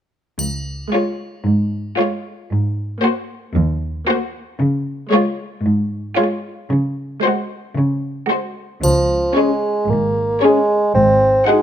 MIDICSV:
0, 0, Header, 1, 9, 480
1, 0, Start_track
1, 0, Key_signature, -5, "major"
1, 0, Tempo, 528169
1, 356, Time_signature, 4, 2, 24, 8
1, 10562, End_track
2, 0, Start_track
2, 0, Title_t, "Violin section"
2, 0, Program_c, 0, 48
2, 851, Note_on_c, 0, 73, 36
2, 1205, Note_off_c, 0, 73, 0
2, 1814, Note_on_c, 0, 73, 40
2, 2162, Note_off_c, 0, 73, 0
2, 2751, Note_on_c, 0, 72, 45
2, 3107, Note_off_c, 0, 72, 0
2, 3714, Note_on_c, 0, 72, 51
2, 4064, Note_off_c, 0, 72, 0
2, 4653, Note_on_c, 0, 73, 54
2, 5009, Note_off_c, 0, 73, 0
2, 5605, Note_on_c, 0, 73, 45
2, 5967, Note_off_c, 0, 73, 0
2, 6573, Note_on_c, 0, 72, 49
2, 6930, Note_off_c, 0, 72, 0
2, 7545, Note_on_c, 0, 72, 44
2, 7906, Note_off_c, 0, 72, 0
2, 8503, Note_on_c, 0, 73, 43
2, 8863, Note_off_c, 0, 73, 0
2, 9466, Note_on_c, 0, 73, 41
2, 9828, Note_off_c, 0, 73, 0
2, 10433, Note_on_c, 0, 78, 48
2, 10562, Note_off_c, 0, 78, 0
2, 10562, End_track
3, 0, Start_track
3, 0, Title_t, "Violin section"
3, 0, Program_c, 1, 48
3, 849, Note_on_c, 1, 65, 34
3, 1203, Note_off_c, 1, 65, 0
3, 1806, Note_on_c, 1, 65, 37
3, 2158, Note_off_c, 1, 65, 0
3, 2763, Note_on_c, 1, 66, 37
3, 3113, Note_off_c, 1, 66, 0
3, 3701, Note_on_c, 1, 66, 48
3, 4058, Note_off_c, 1, 66, 0
3, 4651, Note_on_c, 1, 65, 43
3, 5008, Note_off_c, 1, 65, 0
3, 5615, Note_on_c, 1, 65, 40
3, 5972, Note_off_c, 1, 65, 0
3, 6573, Note_on_c, 1, 66, 40
3, 6929, Note_off_c, 1, 66, 0
3, 7531, Note_on_c, 1, 66, 39
3, 7899, Note_off_c, 1, 66, 0
3, 8506, Note_on_c, 1, 68, 37
3, 8864, Note_off_c, 1, 68, 0
3, 9479, Note_on_c, 1, 68, 39
3, 9835, Note_off_c, 1, 68, 0
3, 10427, Note_on_c, 1, 68, 40
3, 10562, Note_off_c, 1, 68, 0
3, 10562, End_track
4, 0, Start_track
4, 0, Title_t, "French horn section"
4, 0, Program_c, 2, 60
4, 8493, Note_on_c, 2, 68, 39
4, 8499, Note_on_c, 2, 61, 37
4, 8639, Note_off_c, 2, 68, 0
4, 8644, Note_off_c, 2, 61, 0
4, 9458, Note_on_c, 2, 68, 38
4, 9472, Note_on_c, 2, 61, 40
4, 9604, Note_off_c, 2, 68, 0
4, 9617, Note_off_c, 2, 61, 0
4, 10442, Note_on_c, 2, 66, 41
4, 10445, Note_on_c, 2, 63, 46
4, 10562, Note_off_c, 2, 63, 0
4, 10562, Note_off_c, 2, 66, 0
4, 10562, End_track
5, 0, Start_track
5, 0, Title_t, "Bassoon"
5, 0, Program_c, 3, 70
5, 8025, Note_on_c, 3, 53, 58
5, 8474, Note_off_c, 3, 53, 0
5, 8509, Note_on_c, 3, 56, 50
5, 8993, Note_on_c, 3, 58, 57
5, 9006, Note_off_c, 3, 56, 0
5, 9477, Note_off_c, 3, 58, 0
5, 9491, Note_on_c, 3, 56, 57
5, 9940, Note_off_c, 3, 56, 0
5, 9946, Note_on_c, 3, 60, 71
5, 10421, Note_off_c, 3, 60, 0
5, 10429, Note_on_c, 3, 56, 59
5, 10562, Note_off_c, 3, 56, 0
5, 10562, End_track
6, 0, Start_track
6, 0, Title_t, "Viola section"
6, 0, Program_c, 4, 48
6, 835, Note_on_c, 4, 56, 42
6, 1196, Note_off_c, 4, 56, 0
6, 1795, Note_on_c, 4, 56, 40
6, 2152, Note_off_c, 4, 56, 0
6, 2746, Note_on_c, 4, 58, 47
6, 3105, Note_off_c, 4, 58, 0
6, 3709, Note_on_c, 4, 58, 48
6, 4062, Note_off_c, 4, 58, 0
6, 4651, Note_on_c, 4, 56, 58
6, 5009, Note_off_c, 4, 56, 0
6, 5617, Note_on_c, 4, 56, 51
6, 5973, Note_off_c, 4, 56, 0
6, 6578, Note_on_c, 4, 56, 55
6, 6932, Note_off_c, 4, 56, 0
6, 7538, Note_on_c, 4, 56, 44
6, 7903, Note_off_c, 4, 56, 0
6, 8507, Note_on_c, 4, 61, 46
6, 8865, Note_off_c, 4, 61, 0
6, 9486, Note_on_c, 4, 61, 46
6, 9839, Note_off_c, 4, 61, 0
6, 10428, Note_on_c, 4, 63, 49
6, 10562, Note_off_c, 4, 63, 0
6, 10562, End_track
7, 0, Start_track
7, 0, Title_t, "Cello section"
7, 0, Program_c, 5, 48
7, 353, Note_on_c, 5, 37, 46
7, 737, Note_off_c, 5, 37, 0
7, 1311, Note_on_c, 5, 44, 50
7, 1695, Note_off_c, 5, 44, 0
7, 2275, Note_on_c, 5, 44, 44
7, 2653, Note_off_c, 5, 44, 0
7, 3223, Note_on_c, 5, 39, 62
7, 3603, Note_off_c, 5, 39, 0
7, 4174, Note_on_c, 5, 49, 61
7, 4554, Note_off_c, 5, 49, 0
7, 5123, Note_on_c, 5, 44, 59
7, 5509, Note_off_c, 5, 44, 0
7, 6090, Note_on_c, 5, 49, 56
7, 6471, Note_off_c, 5, 49, 0
7, 7050, Note_on_c, 5, 49, 56
7, 7434, Note_off_c, 5, 49, 0
7, 8024, Note_on_c, 5, 37, 52
7, 8406, Note_off_c, 5, 37, 0
7, 8988, Note_on_c, 5, 44, 50
7, 9373, Note_off_c, 5, 44, 0
7, 9964, Note_on_c, 5, 44, 51
7, 10339, Note_off_c, 5, 44, 0
7, 10562, End_track
8, 0, Start_track
8, 0, Title_t, "Double bass section"
8, 0, Program_c, 6, 48
8, 8035, Note_on_c, 6, 37, 45
8, 8412, Note_off_c, 6, 37, 0
8, 8998, Note_on_c, 6, 32, 55
8, 9378, Note_off_c, 6, 32, 0
8, 9961, Note_on_c, 6, 32, 60
8, 10338, Note_off_c, 6, 32, 0
8, 10562, End_track
9, 0, Start_track
9, 0, Title_t, "Drums"
9, 354, Note_on_c, 9, 81, 32
9, 445, Note_off_c, 9, 81, 0
9, 8029, Note_on_c, 9, 81, 34
9, 8120, Note_off_c, 9, 81, 0
9, 10562, End_track
0, 0, End_of_file